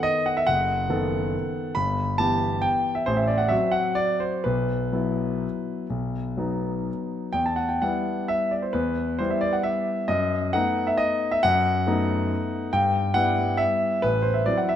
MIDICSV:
0, 0, Header, 1, 2, 480
1, 0, Start_track
1, 0, Key_signature, 1, "minor"
1, 0, Tempo, 432588
1, 534, Time_signature, 3, 2, 24, 8
1, 3898, Tempo, 478088
1, 8698, Tempo, 449775
1, 11578, Tempo, 436364
1, 15720, End_track
2, 0, Start_track
2, 0, Title_t, "Grand piano"
2, 0, Program_c, 0, 0
2, 0, Note_on_c, 0, 51, 47
2, 0, Note_on_c, 0, 59, 44
2, 0, Note_on_c, 0, 69, 51
2, 32, Note_on_c, 0, 75, 92
2, 287, Note_on_c, 0, 78, 69
2, 288, Note_off_c, 0, 75, 0
2, 409, Note_on_c, 0, 76, 81
2, 412, Note_off_c, 0, 78, 0
2, 490, Note_off_c, 0, 59, 0
2, 491, Note_off_c, 0, 51, 0
2, 494, Note_off_c, 0, 69, 0
2, 517, Note_on_c, 0, 78, 91
2, 529, Note_off_c, 0, 76, 0
2, 533, Note_on_c, 0, 30, 59
2, 758, Control_c, 0, 64, 127
2, 979, Note_off_c, 0, 30, 0
2, 993, Note_on_c, 0, 51, 49
2, 993, Note_on_c, 0, 59, 48
2, 1003, Note_on_c, 0, 69, 52
2, 1496, Control_c, 0, 64, 0
2, 1924, Note_off_c, 0, 59, 0
2, 1925, Note_off_c, 0, 51, 0
2, 1929, Note_off_c, 0, 69, 0
2, 1939, Note_on_c, 0, 83, 86
2, 1954, Note_on_c, 0, 31, 58
2, 1960, Note_off_c, 0, 78, 0
2, 2167, Control_c, 0, 64, 127
2, 2411, Note_off_c, 0, 31, 0
2, 2418, Note_off_c, 0, 83, 0
2, 2421, Note_on_c, 0, 81, 89
2, 2432, Note_on_c, 0, 52, 46
2, 2436, Note_on_c, 0, 59, 48
2, 2437, Note_on_c, 0, 67, 49
2, 2903, Note_on_c, 0, 79, 83
2, 2914, Note_off_c, 0, 81, 0
2, 2932, Control_c, 0, 64, 0
2, 3273, Note_on_c, 0, 76, 61
2, 3284, Note_off_c, 0, 79, 0
2, 3368, Note_off_c, 0, 52, 0
2, 3370, Note_off_c, 0, 59, 0
2, 3371, Note_off_c, 0, 67, 0
2, 3397, Note_on_c, 0, 72, 84
2, 3403, Note_off_c, 0, 76, 0
2, 3409, Note_on_c, 0, 33, 59
2, 3515, Note_on_c, 0, 76, 57
2, 3524, Note_off_c, 0, 72, 0
2, 3621, Control_c, 0, 64, 127
2, 3633, Note_on_c, 0, 74, 68
2, 3644, Note_off_c, 0, 76, 0
2, 3748, Note_on_c, 0, 78, 62
2, 3764, Note_off_c, 0, 74, 0
2, 3867, Note_on_c, 0, 76, 79
2, 3881, Note_off_c, 0, 33, 0
2, 3884, Note_off_c, 0, 78, 0
2, 3887, Note_on_c, 0, 54, 43
2, 3891, Note_on_c, 0, 66, 47
2, 3892, Note_on_c, 0, 60, 44
2, 3911, Control_c, 0, 64, 0
2, 4101, Note_on_c, 0, 78, 82
2, 4113, Note_off_c, 0, 76, 0
2, 4339, Note_on_c, 0, 74, 84
2, 4353, Note_off_c, 0, 78, 0
2, 4588, Note_on_c, 0, 72, 64
2, 4600, Note_off_c, 0, 74, 0
2, 4816, Note_off_c, 0, 54, 0
2, 4818, Note_off_c, 0, 60, 0
2, 4818, Note_off_c, 0, 66, 0
2, 4828, Note_on_c, 0, 71, 69
2, 4845, Note_on_c, 0, 35, 56
2, 4848, Note_off_c, 0, 72, 0
2, 5052, Control_c, 0, 64, 127
2, 5317, Note_on_c, 0, 54, 43
2, 5321, Note_off_c, 0, 35, 0
2, 5323, Note_on_c, 0, 59, 43
2, 5328, Note_on_c, 0, 64, 44
2, 5845, Control_c, 0, 64, 0
2, 6251, Note_off_c, 0, 54, 0
2, 6254, Note_off_c, 0, 59, 0
2, 6256, Note_off_c, 0, 64, 0
2, 6293, Note_on_c, 0, 35, 48
2, 6529, Control_c, 0, 64, 127
2, 6763, Note_off_c, 0, 35, 0
2, 6769, Note_on_c, 0, 54, 42
2, 6778, Note_on_c, 0, 59, 43
2, 6781, Note_on_c, 0, 63, 42
2, 7261, Note_off_c, 0, 71, 0
2, 7292, Control_c, 0, 64, 0
2, 7705, Note_off_c, 0, 54, 0
2, 7709, Note_off_c, 0, 59, 0
2, 7711, Note_off_c, 0, 63, 0
2, 7726, Note_on_c, 0, 79, 83
2, 7736, Note_on_c, 0, 40, 51
2, 7854, Note_off_c, 0, 79, 0
2, 7858, Note_on_c, 0, 81, 58
2, 7939, Control_c, 0, 64, 127
2, 7962, Note_on_c, 0, 78, 59
2, 7980, Note_off_c, 0, 81, 0
2, 8090, Note_on_c, 0, 79, 54
2, 8092, Note_off_c, 0, 78, 0
2, 8200, Note_off_c, 0, 40, 0
2, 8216, Note_off_c, 0, 79, 0
2, 8220, Note_on_c, 0, 78, 70
2, 8222, Note_on_c, 0, 55, 43
2, 8231, Control_c, 0, 64, 0
2, 8235, Note_on_c, 0, 59, 42
2, 8239, Note_on_c, 0, 64, 44
2, 8688, Note_on_c, 0, 76, 80
2, 8697, Note_off_c, 0, 78, 0
2, 8930, Note_on_c, 0, 74, 54
2, 8935, Note_off_c, 0, 76, 0
2, 9050, Note_on_c, 0, 72, 50
2, 9052, Note_off_c, 0, 74, 0
2, 9131, Note_off_c, 0, 55, 0
2, 9137, Note_off_c, 0, 59, 0
2, 9139, Note_off_c, 0, 64, 0
2, 9163, Note_on_c, 0, 71, 71
2, 9169, Note_off_c, 0, 72, 0
2, 9176, Note_on_c, 0, 40, 55
2, 9368, Control_c, 0, 64, 127
2, 9646, Note_off_c, 0, 40, 0
2, 9650, Note_on_c, 0, 72, 73
2, 9654, Note_off_c, 0, 71, 0
2, 9665, Note_on_c, 0, 55, 46
2, 9667, Note_on_c, 0, 59, 43
2, 9670, Note_on_c, 0, 64, 47
2, 9674, Control_c, 0, 64, 0
2, 9776, Note_on_c, 0, 76, 58
2, 9779, Note_off_c, 0, 72, 0
2, 9888, Note_on_c, 0, 74, 78
2, 9905, Note_off_c, 0, 76, 0
2, 10014, Note_on_c, 0, 78, 59
2, 10023, Note_off_c, 0, 74, 0
2, 10128, Note_on_c, 0, 76, 77
2, 10148, Note_off_c, 0, 78, 0
2, 10592, Note_off_c, 0, 55, 0
2, 10594, Note_off_c, 0, 59, 0
2, 10595, Note_off_c, 0, 64, 0
2, 10603, Note_on_c, 0, 75, 80
2, 10612, Note_on_c, 0, 42, 63
2, 10618, Note_off_c, 0, 76, 0
2, 10853, Control_c, 0, 64, 127
2, 11076, Note_off_c, 0, 42, 0
2, 11085, Note_on_c, 0, 78, 86
2, 11086, Note_off_c, 0, 75, 0
2, 11092, Note_on_c, 0, 57, 48
2, 11101, Note_on_c, 0, 59, 48
2, 11105, Note_on_c, 0, 63, 52
2, 11111, Control_c, 0, 64, 0
2, 11446, Note_on_c, 0, 76, 67
2, 11453, Note_off_c, 0, 78, 0
2, 11559, Note_on_c, 0, 75, 89
2, 11572, Note_off_c, 0, 76, 0
2, 11926, Note_off_c, 0, 75, 0
2, 11933, Note_on_c, 0, 76, 81
2, 12004, Note_off_c, 0, 57, 0
2, 12009, Note_off_c, 0, 59, 0
2, 12011, Note_off_c, 0, 63, 0
2, 12051, Note_off_c, 0, 76, 0
2, 12059, Note_on_c, 0, 78, 101
2, 12073, Note_on_c, 0, 42, 66
2, 12275, Control_c, 0, 64, 127
2, 12523, Note_off_c, 0, 42, 0
2, 12539, Note_on_c, 0, 57, 53
2, 12546, Note_on_c, 0, 59, 52
2, 12551, Note_on_c, 0, 63, 58
2, 13031, Control_c, 0, 64, 0
2, 13457, Note_off_c, 0, 57, 0
2, 13460, Note_off_c, 0, 59, 0
2, 13463, Note_off_c, 0, 63, 0
2, 13487, Note_on_c, 0, 79, 91
2, 13490, Note_on_c, 0, 43, 61
2, 13498, Note_off_c, 0, 78, 0
2, 13656, Control_c, 0, 64, 127
2, 13941, Note_on_c, 0, 78, 91
2, 13943, Note_off_c, 0, 43, 0
2, 13955, Note_off_c, 0, 79, 0
2, 13955, Note_on_c, 0, 55, 49
2, 13961, Note_on_c, 0, 59, 50
2, 13962, Note_on_c, 0, 64, 56
2, 14418, Note_on_c, 0, 76, 85
2, 14436, Note_off_c, 0, 78, 0
2, 14459, Control_c, 0, 64, 0
2, 14879, Note_off_c, 0, 55, 0
2, 14881, Note_off_c, 0, 59, 0
2, 14882, Note_off_c, 0, 64, 0
2, 14911, Note_off_c, 0, 76, 0
2, 14911, Note_on_c, 0, 71, 88
2, 14925, Note_on_c, 0, 33, 57
2, 15131, Note_on_c, 0, 72, 59
2, 15146, Control_c, 0, 64, 127
2, 15150, Note_off_c, 0, 71, 0
2, 15258, Note_on_c, 0, 76, 58
2, 15262, Note_off_c, 0, 72, 0
2, 15382, Note_off_c, 0, 33, 0
2, 15388, Note_off_c, 0, 76, 0
2, 15390, Note_on_c, 0, 74, 78
2, 15401, Note_on_c, 0, 54, 43
2, 15404, Note_on_c, 0, 60, 44
2, 15405, Control_c, 0, 64, 0
2, 15412, Note_on_c, 0, 64, 50
2, 15519, Note_off_c, 0, 74, 0
2, 15519, Note_on_c, 0, 78, 56
2, 15643, Note_on_c, 0, 76, 76
2, 15650, Note_off_c, 0, 78, 0
2, 15720, Note_off_c, 0, 54, 0
2, 15720, Note_off_c, 0, 60, 0
2, 15720, Note_off_c, 0, 64, 0
2, 15720, Note_off_c, 0, 76, 0
2, 15720, End_track
0, 0, End_of_file